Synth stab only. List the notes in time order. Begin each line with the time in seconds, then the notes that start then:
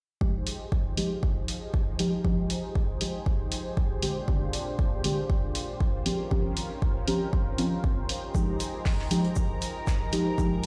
0.21 F3 G#3 D#4 G4
0.97 F3 G#3 D#4 G4
1.99 F3 G#3 D#4 G4
2.24 F3 G#3 D#4 G4
3.01 F3 G#3 D#4 G4
4.02 D3 G#3 C4 G4
4.28 D3 G#3 C4 G4
5.04 D3 G#3 C4 G4
6.06 F3 C4 C#4 G4
6.31 F3 C4 C#4 G4
7.07 F3 C4 C#4 G4
7.58 F3 C4 C#4 F4
8.34 F3 G#3 D#4 G4
9.11 F3 G#3 D#4 G4
10.12 F3 G#3 D#4 G4
10.38 F3 G#3 D#4 G4